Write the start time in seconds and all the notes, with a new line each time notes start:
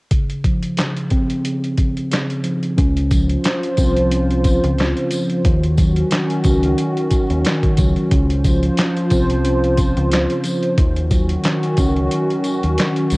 0.11 C#3, kick, closed hi-hat
0.30 closed hi-hat
0.44 F3, kick, closed hi-hat
0.63 closed hi-hat
0.77 C#3, snare, clap, closed hi-hat
0.97 closed hi-hat
1.10 C4, kick, closed hi-hat
1.30 closed hi-hat
1.44 C#3, closed hi-hat
1.64 closed hi-hat
1.78 kick, closed hi-hat
1.97 closed hi-hat
2.12 C#3, snare, clap, closed hi-hat
2.30 closed hi-hat
2.43 F3, closed hi-hat
2.63 closed hi-hat
2.77 C#2 F3 C#4 F4 C5, kick, closed hi-hat
2.97 closed hi-hat
3.11 F3, kick, closed hi-hat, tambourine
3.29 closed hi-hat
3.44 snare, clap, closed hi-hat
3.63 closed hi-hat
3.77 C2 C4, kick, closed hi-hat, tambourine
3.97 closed hi-hat
4.11 C#4, closed hi-hat
4.30 closed hi-hat
4.44 kick, closed hi-hat, tambourine
4.64 C#2, closed hi-hat
4.76 C#3, closed hi-hat
4.80 snare, clap
4.97 closed hi-hat
5.10 F3, closed hi-hat, tambourine
5.29 closed hi-hat
5.44 D#2 D#3 C#4 F#4, kick, closed hi-hat
5.63 closed hi-hat
5.77 F#3, kick, closed hi-hat, tambourine
5.96 closed hi-hat
6.11 D#3, snare, clap, closed hi-hat
6.30 closed hi-hat
6.44 C#2 C#4, kick, closed hi-hat, tambourine
6.63 closed hi-hat
6.78 D#3, closed hi-hat
6.97 closed hi-hat
7.11 kick, closed hi-hat, tambourine
7.30 D#2, closed hi-hat
7.44 D#3, snare, clap, closed hi-hat
7.63 kick, closed hi-hat
7.77 C#2 F#3, kick, closed hi-hat, tambourine
7.96 closed hi-hat
8.11 C#2 F3 C#4 F4 C5, kick, closed hi-hat
8.30 closed hi-hat
8.44 F3, kick, closed hi-hat, tambourine
8.63 closed hi-hat
8.77 snare, clap, closed hi-hat
8.97 closed hi-hat
9.10 C2 C4, kick, closed hi-hat, tambourine
9.30 closed hi-hat
9.45 C#4, closed hi-hat
9.64 closed hi-hat
9.77 kick, closed hi-hat, tambourine
9.97 C#2, closed hi-hat
10.09 C#3, closed hi-hat
10.13 snare, clap
10.30 closed hi-hat
10.44 F3, closed hi-hat, tambourine
10.63 closed hi-hat
10.77 D#2 D#3 C#4 F#4, kick, closed hi-hat
10.97 closed hi-hat
11.11 F#3, kick, closed hi-hat, tambourine
11.29 closed hi-hat
11.44 D#3, snare, clap, closed hi-hat
11.63 closed hi-hat
11.77 C#2 C#4, kick, closed hi-hat, tambourine
11.96 closed hi-hat
12.11 D#3, closed hi-hat
12.30 closed hi-hat
12.44 closed hi-hat, tambourine
12.63 D#2, closed hi-hat
12.77 D#3, snare, clap, closed hi-hat
12.96 closed hi-hat
13.10 C#2 F#3, snare, closed hi-hat, tambourine